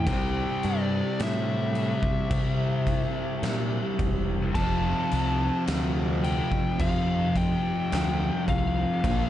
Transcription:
0.07 C2 C3 G3 C4 G5, kick, crash
0.63 G2 D5, crash
1.20 A2 E5, snare, crash
1.75 crash
2.03 kick
2.30 C3, kick, crash
2.87 kick, crash
3.43 A#2, snare, crash
3.99 E1, kick, crash
4.55 F1 F2 C3 F3 A5, kick, crash
5.11 C2, crash
5.67 D2, snare, crash
6.24 G5, crash
6.52 kick
6.79 F2 F5, kick, crash
7.36 G5, kick, crash
7.92 D2, snare, crash
8.48 C2 F5, kick, crash
9.04 A#1 A#2 F3 A#3, kick, crash

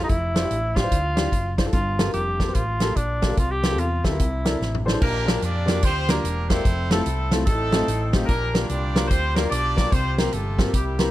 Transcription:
0.02 D#4 E4 F4 G4 A4
0.09 F1 E4, kick, closed hi-hat
0.34 D4 E4 F4 C5, snare, closed hi-hat
0.42 D4 E4 F4 G4
0.51 A1, closed hi-hat
0.75 D4 E4 F4 G4, kick, snare, closed hi-hat
0.83 D4 E4 F4 C5
0.91 D2, kick, closed hi-hat
1.16 D4 E4 F4 G4, snare, closed hi-hat
1.32 F#1, kick, closed hi-hat
1.58 D4 E4 F4 C5, kick, snare, closed hi-hat
1.66 D4 E4 F4 A4
1.73 G1 G2 F4, kick, closed hi-hat
1.99 A#3 F4 G4 A4, snare, closed hi-hat
2.06 A#3 F4 G4 A#4
2.14 F1 G4, closed hi-hat
2.39 A#3 F4 G4 A4, kick, snare, closed hi-hat
2.48 A#3 F4 G4 C5
2.54 A1 F4, kick, closed hi-hat
2.80 A#3 F4 G4 A4, snare, closed hi-hat
2.96 A#1 D4, kick, closed hi-hat
3.22 A#3 F4 G4 A4, kick, snare, closed hi-hat
3.29 A#3 F4 G4 A4
3.37 C2 C3 F4, kick, closed hi-hat
3.51 G4
3.63 C4 F4 G4 A#4, snare, closed hi-hat
3.71 C4 F4 G4 A4
3.78 E2 F4, closed hi-hat
4.04 D2 C4 E4 F4 G4 A4, kick, snare, closed hi-hat
4.11 C4 F4 G4 A#4
4.19 C2 C3, kick, closed hi-hat
4.45 D4 E4 A4 A#4, snare, closed hi-hat
4.60 A1, snare
4.75 mid tom
4.85 D4 E4 A4 C5, snare
4.92 D4 E4 A4 C5
5.00 A#1 A#2 A#3 D4 G4 A#4, kick, crash
5.25 A#3 D4 F4 G4 A#4, snare, closed hi-hat
5.42 F2 D4 F4 G4 D5, closed hi-hat
5.66 A#3 D4 F4 G4 A#4, snare, closed hi-hat
5.83 D2 C4 F4 G4 C5, kick, closed hi-hat
6.09 A#3 D4 F4 G4 A#4, snare, closed hi-hat
6.24 E1, closed hi-hat
6.50 A#3 C4 D4 E4 F4 G4 A4 A#4 C5, kick, snare, closed hi-hat
6.65 F1, kick, closed hi-hat
6.91 A3 C4 E4 F4 A4, snare, closed hi-hat
7.06 C2, closed hi-hat
7.31 A3 C4 E4 F4 A4, snare, closed hi-hat
7.45 A1 A2 A3 C4 D#4 A4, kick, closed hi-hat
7.72 A3 C4 D#4 F4 A4, snare, closed hi-hat
7.88 A1, closed hi-hat
8.13 A3 C4 D#4 F4 G4, kick, snare, closed hi-hat
8.26 A#1 A#2 A#3 D4 G4 A#4, kick, closed hi-hat
8.54 A#3 D4 F4 G4 A#4, snare, closed hi-hat
8.66 C2 G3 D4 F4 G4 D5, closed hi-hat
8.95 A#3 D4 F4 G4 A#4, snare, closed hi-hat
9.08 D2 C4 F4 G4 C5, kick, closed hi-hat
9.34 A#3 D4 F4 G4 A#4, snare, closed hi-hat
9.49 B1 D4 F4 G4 D5, closed hi-hat
9.76 A#3 D4 F4 G4 A#4, kick, snare, closed hi-hat
9.92 C2 C3 C4 F4 G4 C5, kick, closed hi-hat
10.17 A#3 C4 F4 G4 A#4 C5, snare, closed hi-hat
10.33 G1 A3 F4 A4, closed hi-hat
10.58 A#3 C4 F4 G4 A#4, kick, snare, closed hi-hat
10.74 C2 C3 G3 A#3 E4 G4, kick, closed hi-hat
10.99 A#3 C4 E4 G4 A#4, snare, closed hi-hat

